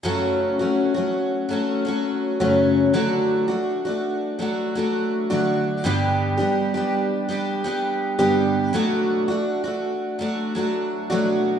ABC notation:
X:1
M:4/4
L:1/16
Q:1/4=83
K:F#phr
V:1 name="Twelve-string acoustic guitar"
[F,,C,F,A,CF]3 [F,A,CF]2 [F,A,CF]3 [F,A,CF]2 [F,A,CF]3 [F,,C,F,A,CF]3 | [D,F,A,DF]3 [A,DF]2 [A,DF]3 [F,A,DF]2 [F,A,DF]3 [D,F,A,DF]3 | [G,,D,G,B,DG]3 [G,B,DG]2 [G,B,DG]3 [G,B,DG]2 [G,B,DG]3 [G,,D,G,B,DG]3 | [B,,F,A,DF]3 [A,DF]2 [A,DF]3 [F,A,DF]2 [F,A,DF]3 [B,,F,A,DF]3 |]